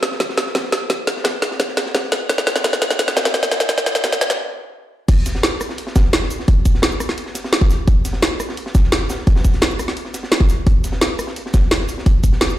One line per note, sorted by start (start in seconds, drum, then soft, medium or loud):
0.03 snare medium
0.03 closed hi-hat medium
0.11 snare medium
0.20 kick loud
0.20 snare medium
0.20 closed hi-hat medium
0.29 snare medium
0.37 snare soft
0.37 snare medium
0.37 closed hi-hat medium
0.46 snare soft
0.55 kick loud
0.55 snare medium
0.55 snare loud
0.55 closed hi-hat medium
0.64 snare soft
0.72 snare medium
0.72 snare soft
0.72 closed hi-hat medium
0.90 kick medium
0.90 snare medium
0.90 closed hi-hat medium
1.07 snare medium
1.07 closed hi-hat medium
1.17 snare soft
1.24 kick loud
1.24 snare loud
1.24 snare medium
1.24 closed hi-hat medium
1.42 snare medium
1.42 closed hi-hat medium
1.51 snare medium
1.59 kick loud
1.59 snare medium
1.59 closed hi-hat medium
1.68 snare soft
1.77 snare medium
1.77 snare soft
1.77 closed hi-hat medium
1.86 snare medium
1.95 kick loud
1.95 snare medium
1.95 snare loud
1.95 closed hi-hat medium
2.04 snare medium
2.12 snare medium
2.12 snare soft
2.12 closed hi-hat medium
2.29 kick loud
2.29 snare medium
2.29 closed hi-hat medium
2.38 snare medium
2.46 snare medium
2.46 snare soft
2.46 closed hi-hat medium
2.55 snare medium
2.64 kick loud
2.64 snare loud
2.64 closed hi-hat loud
2.64 closed hi-hat medium
2.73 snare medium
2.81 snare medium
2.81 closed hi-hat medium
2.90 snare medium
2.90 snare soft
2.99 kick loud
2.99 snare loud
2.99 closed hi-hat loud
2.99 closed hi-hat medium
3.07 snare medium
3.16 snare loud
3.16 closed hi-hat medium
3.25 snare medium
3.25 snare loud
3.25 closed hi-hat medium
3.34 kick loud
3.34 snare loud
3.34 closed hi-hat medium
3.43 snare soft
3.43 snare medium
3.51 snare loud
3.51 snare soft
3.51 closed hi-hat medium
3.60 snare medium
3.69 kick loud
3.69 snare loud
3.69 closed hi-hat medium
3.69 closed hi-hat loud
3.78 snare medium
3.86 snare loud
3.86 closed hi-hat medium
3.95 snare soft
3.95 snare medium
4.04 kick loud
4.04 snare loud
4.04 closed hi-hat loud
4.04 closed hi-hat medium
4.12 snare medium
4.21 snare loud
4.21 closed hi-hat medium
4.30 snare medium
5.08 kick loud
5.08 closed hi-hat loud
5.08 closed hi-hat medium
5.08 crash loud
5.26 snare soft
5.26 closed hi-hat loud
5.26 closed hi-hat medium
5.26 shaker medium
5.35 snare medium
5.43 snare loud
5.43 closed hi-hat medium
5.61 cross-stick soft
5.61 closed hi-hat medium
5.61 open hi-hat medium
5.61 shaker medium
5.69 snare medium
5.78 closed hi-hat medium
5.87 snare medium
5.95 kick loud
5.95 snare loud
5.95 closed hi-hat medium
5.95 closed hi-hat loud
5.95 shaker medium
6.13 snare loud
6.13 closed hi-hat medium
6.22 snare soft
6.30 closed hi-hat medium
6.30 open hi-hat medium
6.30 shaker medium
6.39 snare soft
6.48 kick loud
6.48 closed hi-hat medium
6.65 kick medium
6.65 closed hi-hat loud
6.65 closed hi-hat medium
6.65 shaker medium
6.74 snare soft
6.82 snare loud
6.82 closed hi-hat medium
6.92 shaker soft
7.00 cross-stick soft
7.00 closed hi-hat medium
7.00 open hi-hat medium
7.00 shaker medium
7.09 snare medium
7.09 snare soft
7.17 closed hi-hat medium
7.26 snare soft
7.35 snare soft
7.35 closed hi-hat loud
7.35 closed hi-hat medium
7.35 shaker medium
7.44 snare medium
7.53 snare loud
7.53 closed hi-hat medium
7.61 kick loud
7.61 snare medium
7.70 snare soft
7.70 closed hi-hat medium
7.70 open hi-hat medium
7.70 shaker medium
7.88 kick loud
7.88 closed hi-hat medium
8.05 snare soft
8.05 closed hi-hat medium
8.05 shaker medium
8.13 snare medium
8.22 snare loud
8.22 closed hi-hat medium
8.40 cross-stick soft
8.40 closed hi-hat medium
8.40 open hi-hat medium
8.40 shaker medium
8.49 snare medium
8.57 closed hi-hat medium
8.66 snare medium
8.75 kick loud
8.75 snare medium
8.75 closed hi-hat medium
8.75 shaker medium
8.83 snare soft
8.92 snare loud
8.92 closed hi-hat medium
8.92 closed hi-hat loud
9.01 snare soft
9.09 snare loud
9.09 closed hi-hat medium
9.09 open hi-hat medium
9.09 shaker medium
9.19 snare soft
9.27 kick loud
9.27 snare soft
9.27 closed hi-hat medium
9.36 snare loud
9.36 closed hi-hat medium
9.45 kick medium
9.45 snare soft
9.45 closed hi-hat medium
9.45 shaker medium
9.53 snare soft
9.53 closed hi-hat medium
9.62 snare loud
9.62 closed hi-hat medium
9.71 shaker soft
9.79 cross-stick soft
9.79 closed hi-hat medium
9.79 open hi-hat medium
9.79 shaker medium
9.88 snare soft
9.88 snare medium
9.97 closed hi-hat medium
9.97 closed hi-hat loud
10.05 snare soft
10.14 snare soft
10.14 closed hi-hat medium
10.14 shaker medium
10.23 snare medium
10.32 snare loud
10.32 closed hi-hat medium
10.40 kick loud
10.40 snare medium
10.48 snare soft
10.48 closed hi-hat medium
10.48 open hi-hat medium
10.48 shaker medium
10.67 kick loud
10.67 closed hi-hat medium
10.84 snare soft
10.84 closed hi-hat medium
10.84 shaker medium
10.92 snare medium
11.01 snare loud
11.01 closed hi-hat medium
11.19 cross-stick soft
11.19 closed hi-hat medium
11.19 open hi-hat medium
11.19 shaker medium
11.27 snare medium
11.36 closed hi-hat medium
11.46 snare medium
11.53 kick loud
11.53 snare loud
11.53 closed hi-hat medium
11.53 shaker medium
11.71 snare loud
11.71 closed hi-hat medium
11.80 snare soft
11.89 closed hi-hat medium
11.89 open hi-hat medium
11.89 shaker medium
11.98 snare medium
12.06 kick loud
12.06 closed hi-hat medium
12.23 kick medium
12.23 closed hi-hat medium
12.23 shaker medium
12.32 snare soft
12.41 snare loud
12.41 closed hi-hat loud
12.41 closed hi-hat medium
12.50 shaker soft